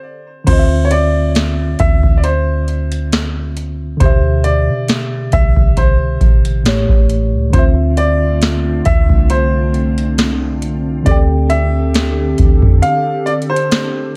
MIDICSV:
0, 0, Header, 1, 6, 480
1, 0, Start_track
1, 0, Tempo, 882353
1, 258, Time_signature, 4, 2, 24, 8
1, 7706, End_track
2, 0, Start_track
2, 0, Title_t, "Grand piano"
2, 0, Program_c, 0, 0
2, 254, Note_on_c, 0, 72, 81
2, 461, Note_on_c, 0, 73, 68
2, 467, Note_off_c, 0, 72, 0
2, 497, Note_off_c, 0, 73, 0
2, 497, Note_on_c, 0, 74, 113
2, 956, Note_off_c, 0, 74, 0
2, 977, Note_on_c, 0, 76, 105
2, 1183, Note_on_c, 0, 74, 61
2, 1189, Note_off_c, 0, 76, 0
2, 1216, Note_on_c, 0, 72, 80
2, 1218, Note_off_c, 0, 74, 0
2, 1675, Note_off_c, 0, 72, 0
2, 2177, Note_on_c, 0, 72, 79
2, 2400, Note_off_c, 0, 72, 0
2, 2416, Note_on_c, 0, 74, 97
2, 2899, Note_on_c, 0, 76, 106
2, 2911, Note_off_c, 0, 74, 0
2, 3141, Note_on_c, 0, 72, 81
2, 3146, Note_off_c, 0, 76, 0
2, 3598, Note_off_c, 0, 72, 0
2, 4097, Note_on_c, 0, 72, 85
2, 4151, Note_off_c, 0, 72, 0
2, 4338, Note_on_c, 0, 74, 99
2, 4817, Note_on_c, 0, 76, 104
2, 4833, Note_off_c, 0, 74, 0
2, 5060, Note_on_c, 0, 72, 83
2, 5065, Note_off_c, 0, 76, 0
2, 5518, Note_off_c, 0, 72, 0
2, 6015, Note_on_c, 0, 74, 96
2, 6070, Note_off_c, 0, 74, 0
2, 6254, Note_on_c, 0, 76, 106
2, 6714, Note_off_c, 0, 76, 0
2, 6975, Note_on_c, 0, 77, 107
2, 7200, Note_off_c, 0, 77, 0
2, 7213, Note_on_c, 0, 74, 96
2, 7243, Note_off_c, 0, 74, 0
2, 7342, Note_on_c, 0, 72, 87
2, 7673, Note_off_c, 0, 72, 0
2, 7706, End_track
3, 0, Start_track
3, 0, Title_t, "Tine electric piano"
3, 0, Program_c, 1, 4
3, 241, Note_on_c, 1, 50, 69
3, 256, Note_on_c, 1, 60, 64
3, 271, Note_on_c, 1, 65, 66
3, 286, Note_on_c, 1, 75, 65
3, 310, Note_off_c, 1, 75, 0
3, 322, Note_on_c, 1, 76, 82
3, 377, Control_c, 1, 64, 127
3, 2148, Note_off_c, 1, 50, 0
3, 2155, Note_off_c, 1, 60, 0
3, 2160, Note_on_c, 1, 50, 76
3, 2163, Note_off_c, 1, 65, 0
3, 2175, Note_on_c, 1, 47, 70
3, 2185, Control_c, 1, 64, 0
3, 2189, Note_off_c, 1, 76, 0
3, 2191, Note_on_c, 1, 67, 67
3, 2206, Note_on_c, 1, 76, 81
3, 2285, Control_c, 1, 64, 127
3, 3587, Note_off_c, 1, 50, 0
3, 3595, Note_off_c, 1, 47, 0
3, 3603, Note_off_c, 1, 67, 0
3, 3610, Note_off_c, 1, 76, 0
3, 3611, Note_on_c, 1, 45, 71
3, 3619, Note_on_c, 1, 57, 62
3, 3624, Control_c, 1, 64, 0
3, 3627, Note_on_c, 1, 67, 60
3, 3635, Note_on_c, 1, 73, 77
3, 3718, Control_c, 1, 64, 127
3, 4081, Note_on_c, 1, 50, 74
3, 4095, Note_off_c, 1, 45, 0
3, 4096, Note_on_c, 1, 60, 69
3, 4098, Note_off_c, 1, 57, 0
3, 4103, Note_off_c, 1, 67, 0
3, 4106, Note_off_c, 1, 73, 0
3, 4106, Control_c, 1, 64, 0
3, 4112, Note_on_c, 1, 65, 69
3, 4128, Note_on_c, 1, 76, 81
3, 4189, Control_c, 1, 64, 127
3, 5988, Note_off_c, 1, 50, 0
3, 5995, Note_off_c, 1, 60, 0
3, 5999, Note_on_c, 1, 50, 75
3, 6003, Note_off_c, 1, 65, 0
3, 6011, Note_off_c, 1, 76, 0
3, 6011, Note_on_c, 1, 60, 65
3, 6022, Note_on_c, 1, 67, 64
3, 6024, Control_c, 1, 64, 0
3, 6034, Note_on_c, 1, 69, 67
3, 6045, Note_on_c, 1, 79, 78
3, 6130, Control_c, 1, 64, 127
3, 7706, Note_off_c, 1, 50, 0
3, 7706, Note_off_c, 1, 60, 0
3, 7706, Note_off_c, 1, 67, 0
3, 7706, Note_off_c, 1, 69, 0
3, 7706, Note_off_c, 1, 79, 0
3, 7706, End_track
4, 0, Start_track
4, 0, Title_t, "Ambient pad"
4, 0, Program_c, 2, 92
4, 4100, Note_on_c, 2, 57, 69
4, 4100, Note_on_c, 2, 65, 83
4, 4101, Note_on_c, 2, 50, 77
4, 4101, Note_on_c, 2, 60, 70
4, 4101, Note_on_c, 2, 62, 69
4, 6000, Note_off_c, 2, 57, 0
4, 6000, Note_off_c, 2, 65, 0
4, 6018, Note_on_c, 2, 67, 67
4, 6018, Note_on_c, 2, 69, 84
4, 7706, Note_off_c, 2, 50, 0
4, 7706, Note_off_c, 2, 60, 0
4, 7706, Note_off_c, 2, 62, 0
4, 7706, Note_off_c, 2, 67, 0
4, 7706, Note_off_c, 2, 69, 0
4, 7706, End_track
5, 0, Start_track
5, 0, Title_t, "808-style bass"
5, 0, Program_c, 3, 38
5, 258, Note_on_c, 3, 38, 114
5, 956, Note_off_c, 3, 38, 0
5, 978, Note_on_c, 3, 38, 109
5, 2157, Note_off_c, 3, 38, 0
5, 2179, Note_on_c, 3, 38, 112
5, 2548, Note_on_c, 3, 50, 100
5, 2556, Note_off_c, 3, 38, 0
5, 2881, Note_off_c, 3, 50, 0
5, 2899, Note_on_c, 3, 36, 101
5, 3359, Note_off_c, 3, 36, 0
5, 3378, Note_on_c, 3, 33, 103
5, 3733, Note_off_c, 3, 33, 0
5, 3747, Note_on_c, 3, 33, 111
5, 3989, Note_on_c, 3, 37, 103
5, 3997, Note_off_c, 3, 33, 0
5, 4093, Note_off_c, 3, 37, 0
5, 4099, Note_on_c, 3, 38, 112
5, 4797, Note_off_c, 3, 38, 0
5, 4820, Note_on_c, 3, 38, 109
5, 4944, Note_off_c, 3, 38, 0
5, 4948, Note_on_c, 3, 36, 99
5, 5997, Note_off_c, 3, 36, 0
5, 6019, Note_on_c, 3, 38, 120
5, 6717, Note_off_c, 3, 38, 0
5, 6741, Note_on_c, 3, 38, 103
5, 6864, Note_off_c, 3, 38, 0
5, 6868, Note_on_c, 3, 41, 110
5, 6978, Note_off_c, 3, 41, 0
5, 7706, End_track
6, 0, Start_track
6, 0, Title_t, "Drums"
6, 256, Note_on_c, 9, 42, 79
6, 256, Note_on_c, 9, 49, 104
6, 257, Note_on_c, 9, 36, 114
6, 311, Note_off_c, 9, 36, 0
6, 311, Note_off_c, 9, 42, 0
6, 311, Note_off_c, 9, 49, 0
6, 494, Note_on_c, 9, 42, 81
6, 548, Note_off_c, 9, 42, 0
6, 735, Note_on_c, 9, 42, 80
6, 740, Note_on_c, 9, 38, 110
6, 789, Note_off_c, 9, 42, 0
6, 795, Note_off_c, 9, 38, 0
6, 973, Note_on_c, 9, 42, 72
6, 978, Note_on_c, 9, 36, 113
6, 1028, Note_off_c, 9, 42, 0
6, 1033, Note_off_c, 9, 36, 0
6, 1106, Note_on_c, 9, 36, 103
6, 1161, Note_off_c, 9, 36, 0
6, 1216, Note_on_c, 9, 42, 80
6, 1271, Note_off_c, 9, 42, 0
6, 1457, Note_on_c, 9, 42, 43
6, 1512, Note_off_c, 9, 42, 0
6, 1586, Note_on_c, 9, 42, 74
6, 1641, Note_off_c, 9, 42, 0
6, 1700, Note_on_c, 9, 42, 73
6, 1703, Note_on_c, 9, 38, 112
6, 1754, Note_off_c, 9, 42, 0
6, 1757, Note_off_c, 9, 38, 0
6, 1940, Note_on_c, 9, 42, 71
6, 1995, Note_off_c, 9, 42, 0
6, 2178, Note_on_c, 9, 36, 123
6, 2178, Note_on_c, 9, 42, 76
6, 2232, Note_off_c, 9, 36, 0
6, 2233, Note_off_c, 9, 42, 0
6, 2416, Note_on_c, 9, 42, 78
6, 2470, Note_off_c, 9, 42, 0
6, 2657, Note_on_c, 9, 42, 83
6, 2662, Note_on_c, 9, 38, 115
6, 2711, Note_off_c, 9, 42, 0
6, 2717, Note_off_c, 9, 38, 0
6, 2895, Note_on_c, 9, 42, 72
6, 2899, Note_on_c, 9, 36, 109
6, 2949, Note_off_c, 9, 42, 0
6, 2953, Note_off_c, 9, 36, 0
6, 3027, Note_on_c, 9, 36, 108
6, 3081, Note_off_c, 9, 36, 0
6, 3138, Note_on_c, 9, 36, 97
6, 3138, Note_on_c, 9, 42, 77
6, 3192, Note_off_c, 9, 36, 0
6, 3193, Note_off_c, 9, 42, 0
6, 3377, Note_on_c, 9, 36, 100
6, 3378, Note_on_c, 9, 42, 39
6, 3431, Note_off_c, 9, 36, 0
6, 3433, Note_off_c, 9, 42, 0
6, 3509, Note_on_c, 9, 42, 72
6, 3563, Note_off_c, 9, 42, 0
6, 3620, Note_on_c, 9, 42, 68
6, 3623, Note_on_c, 9, 38, 114
6, 3675, Note_off_c, 9, 42, 0
6, 3677, Note_off_c, 9, 38, 0
6, 3747, Note_on_c, 9, 36, 92
6, 3801, Note_off_c, 9, 36, 0
6, 3860, Note_on_c, 9, 42, 71
6, 3914, Note_off_c, 9, 42, 0
6, 4099, Note_on_c, 9, 36, 119
6, 4099, Note_on_c, 9, 42, 79
6, 4153, Note_off_c, 9, 36, 0
6, 4153, Note_off_c, 9, 42, 0
6, 4336, Note_on_c, 9, 42, 82
6, 4391, Note_off_c, 9, 42, 0
6, 4578, Note_on_c, 9, 42, 82
6, 4583, Note_on_c, 9, 38, 118
6, 4632, Note_off_c, 9, 42, 0
6, 4638, Note_off_c, 9, 38, 0
6, 4816, Note_on_c, 9, 42, 73
6, 4820, Note_on_c, 9, 36, 114
6, 4870, Note_off_c, 9, 42, 0
6, 4874, Note_off_c, 9, 36, 0
6, 4948, Note_on_c, 9, 36, 100
6, 5002, Note_off_c, 9, 36, 0
6, 5058, Note_on_c, 9, 42, 82
6, 5112, Note_off_c, 9, 42, 0
6, 5299, Note_on_c, 9, 42, 42
6, 5354, Note_off_c, 9, 42, 0
6, 5428, Note_on_c, 9, 42, 76
6, 5482, Note_off_c, 9, 42, 0
6, 5539, Note_on_c, 9, 42, 74
6, 5542, Note_on_c, 9, 38, 106
6, 5593, Note_off_c, 9, 42, 0
6, 5596, Note_off_c, 9, 38, 0
6, 5778, Note_on_c, 9, 42, 74
6, 5832, Note_off_c, 9, 42, 0
6, 6017, Note_on_c, 9, 42, 81
6, 6018, Note_on_c, 9, 36, 121
6, 6071, Note_off_c, 9, 42, 0
6, 6073, Note_off_c, 9, 36, 0
6, 6255, Note_on_c, 9, 42, 78
6, 6310, Note_off_c, 9, 42, 0
6, 6498, Note_on_c, 9, 42, 83
6, 6503, Note_on_c, 9, 38, 118
6, 6552, Note_off_c, 9, 42, 0
6, 6557, Note_off_c, 9, 38, 0
6, 6735, Note_on_c, 9, 42, 74
6, 6740, Note_on_c, 9, 36, 117
6, 6789, Note_off_c, 9, 42, 0
6, 6794, Note_off_c, 9, 36, 0
6, 6868, Note_on_c, 9, 36, 104
6, 6922, Note_off_c, 9, 36, 0
6, 6978, Note_on_c, 9, 42, 84
6, 7032, Note_off_c, 9, 42, 0
6, 7218, Note_on_c, 9, 42, 41
6, 7273, Note_off_c, 9, 42, 0
6, 7299, Note_on_c, 9, 42, 54
6, 7354, Note_off_c, 9, 42, 0
6, 7379, Note_on_c, 9, 42, 72
6, 7433, Note_off_c, 9, 42, 0
6, 7461, Note_on_c, 9, 42, 73
6, 7464, Note_on_c, 9, 38, 111
6, 7515, Note_off_c, 9, 42, 0
6, 7518, Note_off_c, 9, 38, 0
6, 7706, End_track
0, 0, End_of_file